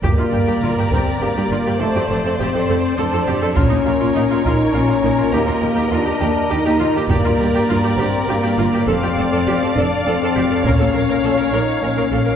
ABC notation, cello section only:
X:1
M:3/4
L:1/16
Q:1/4=102
K:Gm
V:1 name="Cello section" clef=bass
G,, G,, G,, G,, G,, G,, G,, z G,, G,, G,, G,, | F,, F,, F,, F,, F,, F,, F,, z F,, F,, F,, F,, | B,, B,, B,, B,, B,, B,, B,, z B,, B,, B,, B,, | E,, E,, E,, E,, E,, E,, E,, z E,, E,, E,, E,, |
G,, G,, G,, G,, G,, G,, G,, z G,, G,, G,, G,, | F,, F,, F,, F,, F,, F,, F,, z F,, F,, F,, F,, | B,, B,, B,, B,, B,, B,, B,, z B,, B,, B,, B,, |]